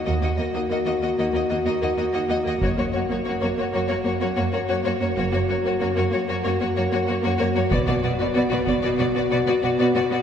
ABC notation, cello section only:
X:1
M:4/4
L:1/16
Q:1/4=94
K:Gb
V:1 name="Cello section" clef=bass
E,, E,, E,, E,, E,, E,, E,, E,, E,, E,, E,, E,, E,, E,, E,, E,, | G,, G,, G,, G,, G,, G,, G,, G,, G,, G,, G,, G,, G,, G,, G,, G,, | G,, G,, G,, G,, G,, G,, G,, G,, G,, G,, G,, G,, G,, G,, G,, G,, | =B,, B,, B,, B,, B,, B,, B,, B,, B,, B,, B,, B,, B,, B,, B,, B,, |]